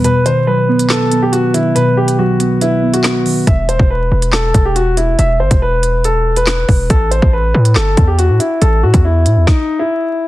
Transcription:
<<
  \new Staff \with { instrumentName = "Upright piano" } { \time 4/4 \key e \minor \tempo 4 = 140 b'8 c''8 b'4 a'8. g'16 fis'8 e'8 | b'8 g'8 fis'4 e'8. fis'4~ fis'16 | e''8 c''8 b'4 a'8. g'16 fis'8 e'8 | e''8 c''8 b'4 a'8. b'4~ b'16 |
a'8 c''8 b'4 a'8. g'16 fis'8 e'8 | a'8 fis'8 e'4 dis'8. e'4~ e'16 | }
  \new Staff \with { instrumentName = "Synth keys" } { \clef bass \time 4/4 \key e \minor b,8 dis8 fis8 b8 b'8 b4 dis8 | b,4 fis8 b8 b'8 b4 dis8 | r1 | r1 |
r1 | r1 | }
  \new Staff \with { instrumentName = "808-style bass" } { \clef bass \time 4/4 \key e \minor r1 | r1 | e,,8. e,,8. e,,4 e,,4. | e,,8 g,,16 e,,2~ e,,8. e,,8 |
a,,8. a,,8. a,8 g,,8 e,8. a,16 r8 | a,,8 a,16 e,8. a,16 e,16 r2 | }
  \new DrumStaff \with { instrumentName = "Drums" } \drummode { \time 4/4 hh8 hh8 r8. hh16 <hc sn>8 hh8 hh8 hh8 | hh8. hh16 r8 hh8 hh8. hh16 <hc hh sn>8 hho8 | <hh bd>8 hh16 bd16 r8. hh16 <hc sn>8 <hh bd>8 hh8 hh8 | hh8. <hh bd>16 r8 hh8 hh8. hh16 <hc hh sn>8 <hho bd>8 |
<hh bd>8 hh16 bd16 r8. hh16 <hc sn>8 <hh bd>8 hh8 hh8 | hh8. <hh bd>16 r8 hh8 <bd sn>4 r4 | }
>>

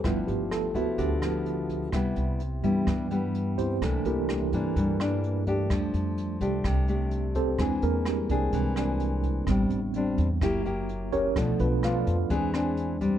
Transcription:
<<
  \new Staff \with { instrumentName = "Tine electric piano" } { \time 4/4 \key c \major \tempo 4 = 127 f'8 g'8 a'8 fis'8 g'2~ | g'4 r2 r8 <c' e' g' c''>8 | <a a'>8 <bes e' g' bes'>8 <g d' e' g'>8 r2 r8 | r2. r8 <c' g' a' c''>8 |
<e' gis'>8 <bes bes'>8 <g d' e' g'>8 r2 r8 | r2. r8 <cis' g' ais' cis''>8 | <f' a'>8 <b d' f' b'>8 <f' b' d'' f''>8 r2 r8 | }
  \new Staff \with { instrumentName = "Tine electric piano" } { \time 4/4 \key c \major <f a b e'>4. r2 r8 | r4. <e b d'>8 r2 | <e bes d'>4. r2 r8 | <g a d'>4. <g a d'>8 r2 |
<gis bis d'>2 <gis bis d'>8 r4. | <g b c' d'>8 r4. <ais e'>4. r8 | <f a d'>4. r8 <gis c' d'>4. r8 | }
  \new Staff \with { instrumentName = "Nylon-string guitar" } { \time 4/4 \key c \major << { <f b e'>4. <f b e'>4 <f b e'>4. | <g b e'>4 r8 <g b e'>4 <g b e'>4. | <e bes d'>4. <e bes d'>4 <e bes d'>4 <a d' g'>8~ | <a d' g'>4. <a d' g'>4 <a d' g'>4. |
<bis d' gis'>4. <bis d' gis'>4 <bis d' gis'>4. | <g c' d'>8 r8 <g c' d'>8 r8 <ais e' g'>8 <ais e' g'>4. | <f a d'>8 r8 <f a d'>8 r8 <c' d' gis'>8 <c' d' gis'>4 <g c' d'>8 | } \\ { g,2 d2 | c2 g,2 | c2 g,2 | f2 c2 |
e2 e2 | a,2 fis2 | b,2 e2 | } >> }
  \new Staff \with { instrumentName = "Upright bass" } { \clef bass \time 4/4 \key c \major g,,8 g,,4 d,8 d,2 | c,8 c,4 g,8 g,2 | c,8 c,4 g,8 g,2 | f,8 f,4 c,8 c,2 |
e,8 e,4 bis,,8 bis,,2 | a,,8 a,,4 e,8 fis,,2 | b,,8 b,,4 f,8 e,2 | }
  \new DrumStaff \with { instrumentName = "Drums" } \drummode { \time 4/4 <hh bd ss>8 hh8 <hh ss>8 <hh bd>8 <hh bd>8 <hh ss>8 hh8 <hh bd>8 | <hh bd ss>8 hh8 hh8 <hh bd>8 <hh bd ss>8 hh8 hh8 <hh bd>8 | <hh bd ss>8 hh8 <hh ss>8 <hh bd>8 <hh bd>8 <hh ss>8 hh8 <hh bd>8 | <hh bd ss>8 hh8 hh8 <hh bd>8 <hh bd ss>8 hh8 hh8 <hh bd>8 |
<hh bd ss>8 hh8 <hh ss>8 <hh bd>8 <hh bd>8 <hh ss>8 hh8 <hh bd>8 | <hh bd ss>8 hh8 hh8 <hh bd>8 <hh bd ss>8 hh8 hh8 <hh bd>8 | <hh bd ss>8 hh8 <hh ss>8 <hh bd>8 <hh bd>8 <hh ss>8 hh8 <hh bd>8 | }
>>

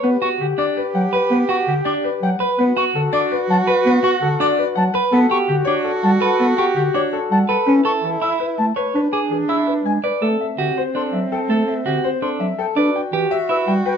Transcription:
<<
  \new Staff \with { instrumentName = "Flute" } { \time 7/8 \key g \lydian \tempo 4 = 165 r8 cis'''8 r8 d'''8 r8 g''8 r8 | r8 cis'''8 r8 d'''8 r8 g''8 r8 | r8 cis'''8 r8 d'''8 r8 a''8 r8 | r8 cis'''8 r8 d'''8 r8 a''8 r8 |
r8 cis'''8 r8 d'''8 r8 a''8 r8 | r8 cis'''8 r8 d'''8 r8 a''8 r8 | r8 cis'''8 r8 e'''8 r8 a''8 r8 | r8 d'''8 r8 e'''8 r8 gis''8 r8 |
\key a \dorian r2 c'''8 r8 g''8 | r2 c'''8 r8 g''8 | r2 e'''8 r8 g''8 | }
  \new Staff \with { instrumentName = "Grand piano" } { \time 7/8 \key g \lydian b'8 fis''8 g'8 d''8 b'8 fis''8 b'8 | b'8 fis''8 g'8 d''8 b'8 fis''8 b'8 | b'8 fis''8 a'8 d''8 b'8 fis''8 b'8 | b'8 fis''8 a'8 d''8 b'8 fis''8 b'8 |
a'8 fis''8 g'8 cis''8 a'8 fis''8 a'8 | a'8 fis''8 g'8 cis''8 a'8 fis''8 a'8 | b'8 a''8 a'8 e''8 b'8 a''8 b'8 | b'8 gis''8 gis'8 e''8 b'8 gis''8 b'8 |
\key a \dorian a'8 e''8 g'8 c''8 a'8 e''8 a'8 | a'8 e''8 g'8 c''8 a'8 e''8 a'8 | b'8 g''8 g'8 e''8 b'8 g''8 b'8 | }
  \new Staff \with { instrumentName = "Clean electric guitar" } { \time 7/8 \key g \lydian r8 fis'8 r8 d'8 r4 b'8 | r8 fis'8 r8 d'8 r4 b'8 | r8 fis'8 r8 d'8 r4 b'8 | r8 fis'8 r8 d'8 r4 b'8 |
r8 g'8 r8 d'8 r4 b'8 | r8 g'8 r8 d'8 r4 b'8 | r8 a'8 r8 e'8 r4 cis''8 | r8 gis'8 r8 e'8 r4 d''8 |
\key a \dorian a'8 r8 fis'8 r8 d'8 r4 | a'8 r8 fis'8 r8 d'8 r4 | d''8 r8 g'8 r8 e'8 r4 | }
  \new Staff \with { instrumentName = "Soprano saxophone" } { \time 7/8 \key g \lydian g'2.~ g'8~ | g'2. r8 | fis'2.~ fis'8~ | fis'2. r8 |
fis'2.~ fis'8~ | fis'2. r8 | e'2. r8 | d'2. r8 |
\key a \dorian c'2.~ c'8~ | c'2. r8 | fis'2.~ fis'8 | }
  \new Staff \with { instrumentName = "Bass clarinet" } { \clef bass \time 7/8 \key g \lydian b8 r8 d8 r4 fis8 r8 | b8 r8 d8 r4 fis8 r8 | b8 r8 d8 r4 fis8 r8 | b8 r8 d8 r4 fis8 r8 |
b8 r8 d8 r4 g8 r8 | b8 r8 d8 r4 g8 r8 | cis'8 r8 e8 r4 a8 r8 | d'8 r8 e8 r4 gis8 r8 |
\key a \dorian a8 r8 d8 r4 fis8 r8 | a8 r8 d8 r4 fis8 r8 | d'8 r8 e8 r4 g8 r8 | }
>>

